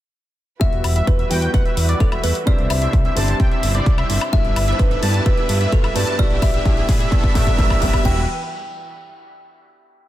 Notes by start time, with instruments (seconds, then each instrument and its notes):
0.60 analog synth bass E1, string section E3 G3 E4 F#4 B4, grand piano G3 B3 E4 F#4, supersaw synth G3 E4 F#4 B4 E5, kalimba E5, analog synth lead E5, kick, closed hi-hat, riser
0.73 analog synth bass E1, closed hi-hat
0.84 analog synth bass E1, open hi-hat, high woodblock
0.96 supersaw synth G3 E4 F#4 B4 E5, analog synth lead E5, closed hi-hat
1.07 analog synth bass E1, kalimba B4, kick, closed hi-hat
1.19 supersaw synth G3 E4 F#4 B4 E5, analog synth lead E5, closed hi-hat
1.29 analog synth bass E2, grand piano G3 B3 E4 F#4, supersaw synth G3 E4 F#4 B4 G5, analog synth lead G5, open hi-hat
1.42 closed hi-hat
1.54 analog synth bass E1, supersaw synth G3 E4 F#4 B4 F#5, kalimba B4, analog synth lead F#5, kick, closed hi-hat
1.65 supersaw synth G3 E4 F#4 B4 E5, analog synth lead E5, closed hi-hat
1.77 analog synth bass E2, open hi-hat
1.89 supersaw synth G3 E4 F#4 B4 D5, analog synth lead D5, closed hi-hat
2.00 analog synth bass E1, kalimba A4, kick, closed hi-hat
2.12 supersaw synth G3 E4 F#4 B4 E5, analog synth lead E5, closed hi-hat, high woodblock
2.24 analog synth bass E2, supersaw synth G3 E4 F#4 B4 E5, kalimba B4, analog synth lead E5, open hi-hat
2.35 closed hi-hat
2.46 analog synth bass C2, grand piano C3 C4 D4 E4 G4, string section C3 C4 D4, supersaw synth G3 D4 E4 C5 E5, kalimba D5, analog synth lead E5, kick, closed hi-hat
2.58 analog synth bass C2, closed hi-hat
2.70 analog synth bass C2, kalimba E5, open hi-hat, high woodblock
2.82 supersaw synth G3 D4 E4 C5 E5, analog synth lead E5, closed hi-hat
2.93 analog synth bass C2, kick, closed hi-hat
3.05 supersaw synth G3 D4 E4 C5 E5, analog synth lead E5, closed hi-hat
3.15 analog synth bass G1, grand piano C3 C4 D4 E4 G4, supersaw synth G3 D4 E4 C5 A5, analog synth lead A5, open hi-hat
3.28 closed hi-hat
3.40 analog synth bass C2, supersaw synth G3 D4 E4 C5 G5, analog synth lead G5, kick, closed hi-hat
3.51 supersaw synth G3 D4 E4 C5 E5, analog synth lead E5, closed hi-hat
3.63 analog synth bass G1, open hi-hat
3.75 supersaw synth G3 D4 E4 C5 D5, analog synth lead D5, closed hi-hat
3.86 analog synth bass C2, kick, closed hi-hat
3.98 supersaw synth G3 D4 E4 C5 E5, analog synth lead E5, closed hi-hat, high woodblock
4.10 analog synth bass G1, supersaw synth G3 D4 E4 C5 E5, analog synth lead E5, open hi-hat
4.21 closed hi-hat, high woodblock
4.32 analog synth bass G1, grand piano G2 B3 D4 E4 G4, string section G3 A4 B4, supersaw synth G3 D4 E4 B4 E5, kalimba E5, analog synth lead E5, kick, closed hi-hat
4.45 analog synth bass G1, closed hi-hat
4.56 analog synth bass G1, open hi-hat, high woodblock
4.68 supersaw synth G3 D4 E4 B4 E5, analog synth lead E5, closed hi-hat
4.73 kalimba C5
4.79 analog synth bass G1, kalimba B4, kick, closed hi-hat
4.91 supersaw synth G3 D4 E4 B4 E5, analog synth lead E5, closed hi-hat
5.02 grand piano G2 B3 D4 E4 G4, analog synth bass G2, supersaw synth G3 D4 E4 B4 A5, analog synth lead A5, open hi-hat
5.14 closed hi-hat
5.25 analog synth bass G1, grand piano G2 B3 D4 E4 G4, supersaw synth G3 D4 E4 B4 E5, kalimba B4, analog synth lead E5, kick, closed hi-hat
5.38 closed hi-hat
5.49 analog synth bass G2, open hi-hat
5.61 supersaw synth G3 D4 E4 B4 E5, analog synth lead E5, closed hi-hat
5.72 analog synth bass G1, kalimba A4, kick, closed hi-hat
5.84 supersaw synth G3 D4 E4 B4 E5, analog synth lead E5, closed hi-hat, high woodblock
5.94 grand piano G2 B3 D4 E4 G4, analog synth bass G2, supersaw synth G3 D4 E4 B4 A5, kalimba B4, analog synth lead A5, open hi-hat
6.07 closed hi-hat
6.18 analog synth bass A1, grand piano G2 B3 D4 E4 G4, supersaw synth G3 D4 E4 B4 E5, string section A3 G4, kalimba D5, analog synth lead E5, kick, closed hi-hat
6.31 analog synth bass A1, closed hi-hat
6.42 analog synth bass A1, kalimba E5, kick, open hi-hat, high woodblock
6.54 supersaw synth G3 D4 E4 B4 E5, analog synth lead E5, closed hi-hat
6.64 analog synth bass A1, grand piano G2 B3 D4 E4 G4, supersaw synth G3 D4 E4 B4 E5, analog synth lead E5, kick, closed hi-hat
6.77 closed hi-hat
6.89 analog synth bass A2, kick, open hi-hat
7.00 supersaw synth G3 D4 E4 B4 E5, analog synth lead E5, closed hi-hat
7.11 analog synth bass A1, grand piano G2 B3 D4 E4 G4, supersaw synth G3 D4 E4 B4 E5, analog synth lead E5, kick, closed hi-hat
7.24 kick, closed hi-hat
7.34 grand piano G2 B3 D4 E4 G4, analog synth bass A2, supersaw synth G3 D4 E4 B4 E5, analog synth lead E5, kick, open hi-hat
7.47 kick, closed hi-hat
7.57 analog synth bass A1, grand piano G2 B3 D4 E4 G4, supersaw synth G3 D4 E4 B4 E5, analog synth lead E5, kick, closed hi-hat
7.70 kick, closed hi-hat, high woodblock
7.81 analog synth bass A1, grand piano G2 B3 D4 E4 G4, supersaw synth G3 D4 E4 B4 E5, analog synth lead E5, kick, open hi-hat
7.93 kick, closed hi-hat, high woodblock
8.04 analog synth bass E1, string section E3 E4 F#4 G4 B4, grand piano G3 B3 E4 F#4, supersaw synth G3 E4 F#4 B4 E5, analog synth lead E5, kalimba G5, kick, crash